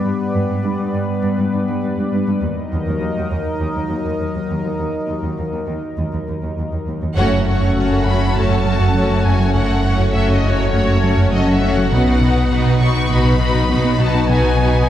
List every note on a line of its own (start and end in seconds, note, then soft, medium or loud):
0.00 2.42 G3 medium
0.00 2.38 B3 medium
0.00 2.38 B4 medium
0.00 2.42 D5 medium
0.04 0.10 G2 medium
0.34 0.40 G2 soft
0.48 0.54 G2 medium
0.63 0.69 G2 soft
0.78 0.84 G2 soft
0.93 0.99 G2 medium
1.23 1.29 G2 soft
1.38 1.44 G2 soft
1.53 1.59 G2 soft
1.68 1.74 G2 soft
1.83 1.89 G2 soft
1.98 2.03 G2 soft
2.13 2.19 G2 soft
2.27 2.33 G2 soft
2.41 2.48 D#2 soft
2.41 7.16 F#3 medium
2.41 7.17 D#4 medium
2.41 7.17 A#4 medium
2.41 7.17 D#5 medium
2.72 2.78 D#2 soft
2.87 2.93 D#2 soft
3.02 3.08 D#2 soft
3.17 3.22 D#2 soft
3.31 3.37 D#2 soft
3.61 3.67 D#2 soft
3.76 3.82 D#2 soft
3.90 3.96 D#2 soft
4.06 4.12 D#2 soft
4.20 4.26 D#2 soft
4.35 4.41 D#2 soft
4.50 4.56 D#2 soft
4.65 4.71 D#2 soft
4.79 4.85 D#2 soft
5.09 5.15 D#2 soft
5.23 5.29 D#2 soft
5.38 5.44 D#2 soft
5.53 5.59 D#2 soft
5.68 5.74 D#2 soft
5.98 6.04 D#2 soft
6.13 6.19 D#2 soft
6.28 6.34 D#2 soft
6.43 6.49 D#2 soft
6.58 6.64 D#2 soft
6.73 6.78 D#2 soft
6.87 6.93 D#2 soft
7.02 7.08 D#2 soft
7.16 7.66 F#1 medium
7.16 11.94 F#1 soft
7.16 7.66 F#2 medium
7.16 7.26 F#2 medium
7.16 11.88 F#3 medium
7.16 11.88 A3 medium
7.16 7.45 A3 medium
7.16 11.88 C#4 soft
7.16 7.45 C#4 medium
7.16 11.88 C#4 medium
7.16 7.44 F#4 medium
7.16 11.88 A4 medium
7.16 7.44 C#5 medium
7.16 8.02 F#5 medium
7.16 11.88 F#5 medium
7.32 7.41 F#2 medium
7.47 7.56 F#2 soft
7.47 7.75 A3 soft
7.47 7.75 C#4 soft
7.47 7.76 F#4 soft
7.47 7.76 C#5 soft
7.62 7.71 F#2 medium
7.76 8.29 F#1 soft
7.76 7.85 F#2 soft
7.76 8.29 F#2 soft
7.76 8.05 A3 soft
7.76 8.05 C#4 soft
7.76 8.06 F#4 soft
7.76 8.06 C#5 soft
7.91 8.00 F#2 soft
8.05 8.15 F#2 medium
8.05 8.35 A3 soft
8.05 8.35 C#4 soft
8.05 8.36 F#4 soft
8.05 8.36 C#5 soft
8.05 8.36 B5 medium
8.21 8.30 F#2 soft
8.35 8.88 F#1 soft
8.35 8.88 F#2 soft
8.35 8.45 F#2 medium
8.35 8.64 A3 soft
8.35 8.64 C#4 soft
8.35 8.66 F#4 soft
8.35 8.66 C#5 soft
8.35 9.25 A5 soft
8.51 8.60 F#2 medium
8.65 8.74 F#3 medium
8.65 8.94 A3 soft
8.65 8.95 C#4 soft
8.65 8.95 F#4 soft
8.65 8.95 C#5 soft
8.80 8.89 F#2 medium
8.95 9.48 F#1 soft
8.95 9.48 F#2 soft
8.95 9.04 F#3 soft
8.95 9.24 A3 soft
8.95 9.24 C#4 soft
8.95 9.25 F#4 soft
8.95 9.25 C#5 soft
9.10 9.19 F#3 soft
9.24 9.34 F#2 medium
9.24 9.53 A3 soft
9.24 9.53 C#4 soft
9.24 9.54 F#4 soft
9.24 9.54 C#5 soft
9.24 9.54 G#5 medium
9.40 9.49 F#3 soft
9.54 10.07 F#1 soft
9.54 9.64 F#2 medium
9.54 10.07 F#2 soft
9.54 9.83 A3 soft
9.54 9.83 C#4 soft
9.54 9.83 F#4 soft
9.54 9.83 C#5 soft
9.54 10.12 F#5 medium
9.69 9.78 F#2 medium
9.84 9.93 F#2 soft
9.84 10.13 A3 soft
9.84 10.13 C#4 soft
9.84 10.13 F#4 soft
9.84 10.13 C#5 soft
10.00 10.08 F#2 medium
10.13 10.67 F#1 medium
10.13 10.23 F#2 soft
10.13 10.67 F#2 soft
10.13 10.42 A3 soft
10.13 10.42 C#4 soft
10.13 10.43 F#4 soft
10.13 10.43 C#5 soft
10.13 10.33 E5 medium
10.29 10.38 F#2 medium
10.34 10.53 D#5 soft
10.44 10.53 F#2 medium
10.44 10.72 A3 soft
10.44 10.72 C#4 soft
10.44 10.73 F#4 soft
10.44 10.72 C#5 soft
10.53 10.72 C#5 medium
10.59 10.68 F#2 soft
10.73 11.26 F#1 soft
10.73 10.82 F#2 medium
10.73 11.26 F#2 soft
10.73 11.02 A3 soft
10.73 11.02 C#4 soft
10.73 11.02 F#4 soft
10.73 11.31 C#5 medium
10.73 11.02 C#5 soft
10.88 10.97 F#2 medium
11.03 11.12 F#3 medium
11.03 11.32 A3 soft
11.03 11.31 C#4 soft
11.03 11.32 F#4 soft
11.03 11.32 C#5 soft
11.17 11.27 F#2 medium
11.33 11.85 F#1 soft
11.33 11.85 F#2 medium
11.33 11.42 F#3 soft
11.33 11.62 A3 soft
11.33 11.62 C#4 soft
11.33 11.61 F#4 soft
11.33 11.61 C#5 soft
11.33 11.52 D#5 medium
11.47 11.56 F#3 soft
11.53 11.72 E5 medium
11.62 11.71 F#2 medium
11.62 11.92 A3 soft
11.62 11.92 C#4 soft
11.62 11.91 F#4 soft
11.62 11.92 C#5 soft
11.72 11.91 F#5 medium
11.77 11.86 F#3 medium
11.92 12.45 B1 soft
11.92 14.89 B1 medium
11.92 12.01 B2 medium
11.92 12.45 B2 soft
11.92 14.89 F#3 medium
11.92 14.89 B3 soft
11.92 14.89 B3 medium
11.92 12.21 B3 soft
11.92 14.89 D#4 soft
11.92 12.20 D#4 soft
11.92 12.21 F#4 soft
11.92 14.89 B4 medium
11.92 12.21 B4 soft
11.92 14.89 D#5 medium
11.92 12.79 F#5 medium
12.07 12.16 B2 medium
12.21 12.30 B2 medium
12.21 12.51 B3 soft
12.21 12.51 D#4 soft
12.21 12.51 F#4 soft
12.21 12.50 B4 soft
12.36 12.45 B2 medium
12.51 13.04 B1 soft
12.51 12.60 B2 soft
12.51 13.04 B2 medium
12.51 12.80 B3 soft
12.51 12.80 D#4 soft
12.51 12.81 F#4 soft
12.51 12.80 B4 soft
12.66 12.75 B2 soft
12.81 12.90 B2 medium
12.81 13.10 B3 soft
12.81 13.10 D#4 soft
12.81 13.09 F#4 soft
12.81 13.09 B4 soft
12.81 13.11 C#6 medium
12.95 13.04 B2 medium
13.10 13.63 B1 medium
13.10 13.19 B2 medium
13.10 13.63 B2 medium
13.10 13.39 B3 soft
13.10 13.39 D#4 soft
13.10 13.39 F#4 soft
13.10 13.39 B4 soft
13.10 14.00 B5 medium
13.25 13.34 B2 medium
13.40 13.49 B3 medium
13.40 13.69 B3 soft
13.40 13.69 D#4 soft
13.40 13.69 F#4 soft
13.40 13.68 B4 soft
13.55 13.64 B2 medium
13.69 14.23 B1 medium
13.69 14.23 B2 medium
13.69 13.79 B3 medium
13.69 13.98 B3 soft
13.69 13.99 D#4 soft
13.69 13.99 F#4 soft
13.69 13.99 B4 soft
13.85 13.94 B3 medium
14.00 14.09 B2 medium
14.00 14.28 B3 soft
14.00 14.28 D#4 soft
14.00 14.28 F#4 soft
14.00 14.28 B4 soft
14.00 14.30 A5 medium
14.15 14.24 B3 soft
14.29 14.82 B1 medium
14.29 14.38 B2 medium
14.29 14.82 B2 medium
14.29 14.58 B3 medium
14.29 14.58 D#4 soft
14.29 14.58 F#4 soft
14.29 14.58 B4 medium
14.29 14.88 G#5 medium
14.44 14.53 B2 medium
14.59 14.68 B2 medium
14.59 14.88 B3 soft
14.59 14.88 D#4 soft
14.59 14.88 F#4 soft
14.59 14.89 B4 soft
14.74 14.83 B2 medium